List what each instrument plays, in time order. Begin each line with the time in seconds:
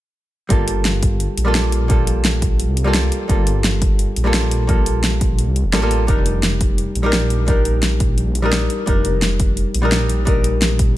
0.49 detuned saw bass G1, hollow-body jazz guitar G3 A#3 F4 A4, kick, closed hi-hat
0.68 closed hi-hat
0.85 snare, closed hi-hat
1.03 kick, closed hi-hat
1.20 closed hi-hat
1.37 detuned saw bass A#1, closed hi-hat
1.45 hollow-body jazz guitar G3 A#3 F4 A4
1.55 snare, closed hi-hat
1.72 closed hi-hat
1.88 hollow-body jazz guitar G3 A#3 F4 A4, kick, closed hi-hat
2.07 closed hi-hat
2.25 snare, closed hi-hat
2.42 kick, closed hi-hat
2.60 closed hi-hat
2.68 detuned saw bass C2
2.77 closed hi-hat
2.84 hollow-body jazz guitar G3 A#3 F4 A4
2.94 snare, closed hi-hat
3.12 closed hi-hat
3.28 detuned saw bass G1, hollow-body jazz guitar G3 A#3 F4 A4, kick, closed hi-hat
3.47 closed hi-hat
3.64 snare, closed hi-hat
3.82 kick, closed hi-hat
3.99 closed hi-hat
4.16 detuned saw bass A#1, closed hi-hat
4.24 hollow-body jazz guitar G3 A#3 F4 A4
4.34 snare, closed hi-hat
4.51 closed hi-hat
4.67 hollow-body jazz guitar G3 A#3 F4 A4, kick, closed hi-hat
4.86 closed hi-hat
5.04 snare, closed hi-hat
5.21 kick, closed hi-hat
5.39 closed hi-hat
5.47 detuned saw bass C2
5.56 closed hi-hat
5.65 detuned saw bass F1
5.73 detuned saw bass A1, hollow-body jazz guitar G3 A#3 F4 A4, snare, closed hi-hat
5.82 hollow-body jazz guitar G3 A#3 F4 A4
5.91 closed hi-hat
6.07 detuned saw bass F1, hollow-body jazz guitar G3 D4 D#4 A#4, kick, closed hi-hat
6.26 closed hi-hat
6.43 snare, closed hi-hat
6.61 kick, closed hi-hat
6.78 closed hi-hat
6.95 detuned saw bass A#1, closed hi-hat
7.03 hollow-body jazz guitar G3 D4 D#4 A#4
7.13 snare, closed hi-hat
7.30 closed hi-hat
7.46 hollow-body jazz guitar G3 D4 D#4 A#4, kick, closed hi-hat
7.65 closed hi-hat
7.83 snare, closed hi-hat
8.00 kick, closed hi-hat
8.18 closed hi-hat
8.27 detuned saw bass A#1
8.35 closed hi-hat
8.42 hollow-body jazz guitar G3 D4 D#4 A#4
8.53 snare, closed hi-hat
8.70 closed hi-hat
8.86 detuned saw bass F1, hollow-body jazz guitar G3 D4 D#4 A#4, kick, closed hi-hat
9.05 closed hi-hat
9.22 snare, closed hi-hat
9.40 kick, closed hi-hat
9.57 closed hi-hat
9.74 detuned saw bass A#1, closed hi-hat
9.82 hollow-body jazz guitar G3 D4 D#4 A#4
9.92 snare, closed hi-hat
10.09 closed hi-hat
10.25 hollow-body jazz guitar G3 D4 D#4 A#4, kick, closed hi-hat
10.44 closed hi-hat
10.62 snare, closed hi-hat
10.79 kick, closed hi-hat